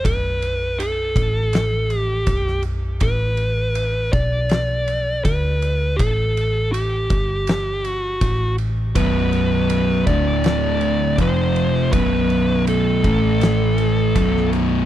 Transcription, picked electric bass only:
\new Staff \with { instrumentName = "Picked electric bass" } { \clef bass \time 4/4 \key b \minor \tempo 4 = 81 b,,,4. a,,4. b,,,4 | a,,4. b,,4. d,4 | a,,4. g,,4. a,,4 | b,,,4. d,,4. f,,4 |
b,,,4. a,,4. b,,,4 | }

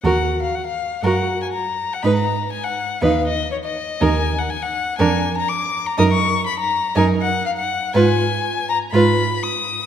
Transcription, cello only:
\new Staff \with { instrumentName = "Cello" } { \clef bass \time 4/4 \key ees \minor \tempo 4 = 121 ees,4 r4 ges,4 r4 | aes,4 r4 ees,4 r4 | ees,4 r4 f,4 r4 | ges,4 r4 ges,4 r4 |
aes,4 r4 aes,4 r4 | }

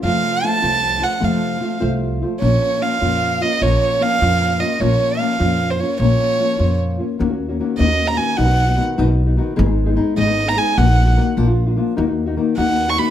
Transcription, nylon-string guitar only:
\new Staff \with { instrumentName = "Nylon-string guitar" } { \time 6/8 \key bes \minor \tempo 4. = 101 <f, c f a c' f'>4 <f a c' f'>8 <f, c f a c' f'>4 <f a c' f'>8 | <f, c f a c' f'>4 <f a c' f'>8 <f, c f a c' f'>4 <f a c' f'>8 | <bes, f bes des' f'>4 <f bes des' f'>8 <bes, f bes des' f'>4 <bes des' f'>8 | <bes, f bes des' f'>4 <f bes des' f'>8 <bes, f bes des' f'>4 <bes des' f'>8 |
<bes, f bes des' f'>4 <f bes des' f'>8 <bes, f bes des' f'>4 <bes des' f'>8 | <bes, f bes des' f'>4 <f bes des' f'>8 <bes, f bes des' f'>4 <bes des' f'>8 | \key ees \minor <ees bes des' ges'>16 <bes des' ges'>8 <bes des' ges'>16 <ees bes des' ges'>8 <ees bes des' ges'>16 <bes des' ges'>8 <bes des' ges'>16 <ees bes des' ges'>8 | <b, dis b dis' fis'>16 <b dis' fis'>8 <b dis' fis'>16 <dis b dis' fis'>8 <b, dis b dis' fis'>16 <b dis'>8 <b dis' fis'>16 <dis b dis' fis'>8 |
<aes, ees aes ces' ees' aes'>16 <aes ces' ees' aes'>8 <aes ces' ees' aes'>16 <aes ces' ees' aes'>8 <aes, ees aes ces' ees' aes'>16 <aes ces' ees' aes'>8 <aes ces' ees' aes'>16 <aes ces' ees' aes'>8 | <bes, ees bes ees' ges'>16 <bes ees' ges'>8 <bes ees' ges'>16 <ees bes ees' ges'>8 <bes, f bes d' f'>16 <bes d' f'>8 <bes d' f'>16 <f bes d' f'>8 | <ees bes ees' ges'>16 <bes ees' ges'>8 <bes ees' ges'>16 <ees bes ees' ges'>8 <ees bes ees' ges'>16 <bes ees' ges'>8 <bes ees' ges'>16 <ees bes ees' ges'>8 | }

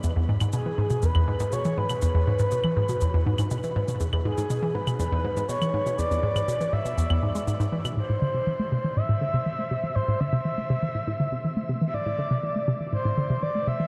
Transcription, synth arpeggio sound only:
\new Staff \with { instrumentName = "Synth arpeggio sound" } { \clef bass \time 4/4 \key e \mixolydian \tempo 4 = 121 e,16 e,16 gis,16 gis,16 b,16 e16 gis,16 b,16 e,16 e,16 gis,16 gis,16 b,16 e16 gis,16 b,16 | e,16 e,16 gis,16 gis,16 b,16 e16 gis,16 b,16 e,16 e,16 gis,16 gis,16 b,16 e16 gis,16 b,16 | e,16 e,16 gis,16 gis,16 b,16 e16 gis,16 b,16 e,16 e,16 gis,16 gis,16 b,16 e16 gis,16 b,16 | e,16 e,16 gis,16 gis,16 b,16 e16 gis,16 b,16 e,16 e,16 gis,16 gis16 gis,16 gis,16 e16 b,16 |
\key a \minor a,16 a,16 d16 c16 e16 a16 c16 e16 a,16 a,16 d16 c16 e16 a16 c16 e16 | a,16 a,16 d16 c16 e16 a16 c16 e16 a,16 a,16 d16 c16 e16 a16 c16 e16 | a,16 a,16 d16 c16 e16 a16 c16 e16 a,16 a,16 d16 c16 e16 a16 c16 e16 | }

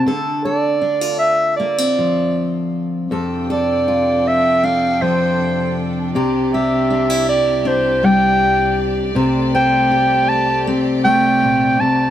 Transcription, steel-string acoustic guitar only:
\new Staff \with { instrumentName = "Steel-string acoustic guitar" } { \time 4/4 \key f \major \tempo 4 = 79 << { a'8 a'8 d'16 f'8. bes16 c'4.~ c'16 | a'8 a'8 f'4 d'2 | g'8 g'8 d'16 e'8. d'2 | c''8 c''8 g'4 c'2 | } \\ { d2~ d8 f4. | f,2~ f,8 f4. | c2~ c8 g4. | c2~ c8 a8 bes,8 c8 | } >> }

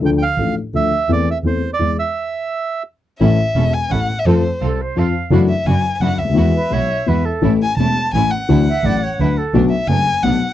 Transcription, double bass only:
\new Staff \with { instrumentName = "Double bass" } { \clef bass \time 3/4 \key a \minor \tempo 4 = 171 d,8 r8 a,,8 r8 d,8 r8 | e,8 r8 e,8 r8 e,8 r8 | r2. | \key a \major a,,8 r8 e,,8 r8 a,,8 r8 |
f,8 r8 c,8 r8 f,8 r8 | fis,,8 r8 fis,,8 r8 fis,,8 d,8 | e,8 r8 b,,8 r8 e,8 r8 | a,,8 r8 e,,8 r8 a,,8 r8 |
d,8 r8 a,,8 r8 d,8 r8 | b,,8 r8 fis,,8 r8 b,,8 r8 | }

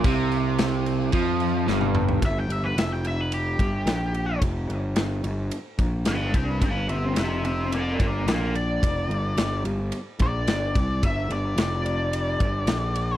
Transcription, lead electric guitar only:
\new Staff \with { instrumentName = "Lead electric guitar" } { \time 4/4 \key f \lydian \tempo 4 = 109 r1 | e''16 g''16 e''16 b'16 e''16 g''16 e''16 b'16 g'2 | r2. <b' g''>8 <b' g''>8 | <b' g''>8 <g' e''>8 <g' e''>8 <g' e''>8 <f' d''>8 <f' d''>8 <f' d''>8 d''8~ |
d''4. r4 d''4. | e''8 d''8 d''2. | }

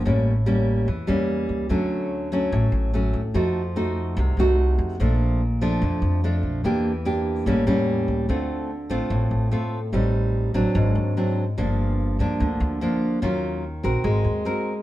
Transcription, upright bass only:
\new Staff \with { instrumentName = "Upright bass" } { \clef bass \time 4/4 \key d \phrygian \tempo 4 = 146 a,,2 e,8 e,4 cis,8 | d,2 a,,8 a,,4 d,8 | f,2 c,8 c,4 f,8 | bes,,2 f,8 f,4 bes,,8 |
e,2 a,,8 e,4 cis,8 | d,4. a,,16 r16 a,,8 a,,8 r4 | a,,4. a,,16 r16 aes,,8 ees,8 r4 | g,,4. d,16 r16 d,8 d,8 r4 |
ees,4. bes,,16 r16 aes,,8 ees,8 r4 | }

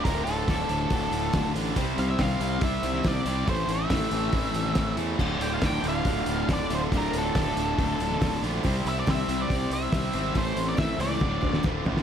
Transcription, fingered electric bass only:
\new Staff \with { instrumentName = "Fingered electric bass" } { \clef bass \time 4/4 \key d \minor \tempo 4 = 140 d,,8 d,,8 d,,8 d,,8 d,,8 d,,8 d,,8 a,,8 | c,8 c,8 c,8 c,8 c,8 c,8 c,8 c,8 | a,,8 a,,8 a,,8 a,,8 a,,8 a,,8 a,,8 e,8 | d,,8 d,,8 d,,8 d,,8 d,,8 d,,8 d,,8 d,,8 |
d,,8 d,,8 d,,8 d,,8 d,,8 d,,8 d,,8 bes,,8 | c,8 c,8 c,8 c,8 c,8 c,8 c,8 gis,,8 | a,,8 a,,8 a,,8 cis,8 d,,8 d,,8 d,,8 a,,8 | }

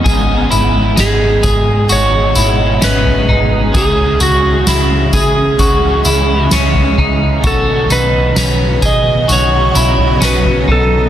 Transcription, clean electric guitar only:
\new Staff \with { instrumentName = "Clean electric guitar" } { \time 4/4 \key cis \minor \tempo 4 = 65 gis'8 e'8 dis'8 gis'8 fis'8 e'8 cis'8 dis'8 | gis'8 fis'8 e'8 gis'8 fis'8 e'8 cis'8 dis'8 | fis'8 dis'8 cis'8 gis'8 fis'8 e'8 cis'8 dis'8 | }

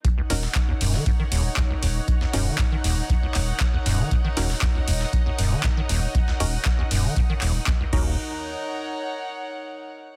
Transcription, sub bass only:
\new Staff \with { instrumentName = "Sub bass" } { \clef bass \time 4/4 \key ees \minor \tempo 4 = 118 r8 ees,,8 r8 ees,,8 r8 ees,,8 r8 ees,,8 | r8 ees,,8 r8 ees,,8 r8 ees,,8 r8 ees,,8 | r8 ees,,8 r8 ees,,8 r8 ees,,8 r8 ees,,8 | r8 ees,,8 r8 ees,,8 r8 ees,,8 r8 ees,,8 |
r1 | }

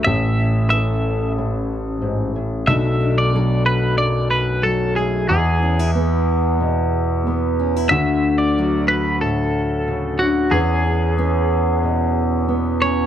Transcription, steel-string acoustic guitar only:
\new Staff \with { instrumentName = "Steel-string acoustic guitar" } { \time 4/4 \key e \mixolydian \tempo 4 = 92 << { cis'8 e'8 a'2. | <fis a d' a'>8 d'8 a'2~ a'8 a8 | e'8 cis'16 e'16 gis'2~ gis'8 cis'16 e'16 | a4 fis'2. |
cis'8 cis'8 cis'2~ cis'8 cis'8 | } \\ { a,4 e4 a,4 gis,8 a,8 | b,4 fis4 fis,4 fis4 | e4 b4 b,4 b4 | d4 fis4 a,4 cis8 d8 |
e4 b4 b,4 b4 | } >> }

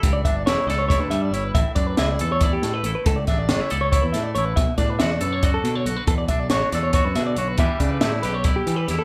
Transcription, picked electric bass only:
\new Staff \with { instrumentName = "Picked electric bass" } { \clef bass \time 7/8 \key a \mixolydian \tempo 4 = 139 cis,8 g,,8 e,,16 r16 cis,8. d,16 g,8 g,,8 | a,,16 r16 fis,8 cis,8 e,4 a,8 a,,16 r16 | cis,8 a,,8 fis,,16 r16 cis,8. e,16 a,8 a,,8 | b,,16 r16 a,8 e,8 fis,4 b,8 b,,16 r16 |
e,8 b,,8 a,,16 r16 e,8. fis,16 b,8 b,,8 | e,16 r16 cis8 a,8 b,,4 e8 e,16 r16 | }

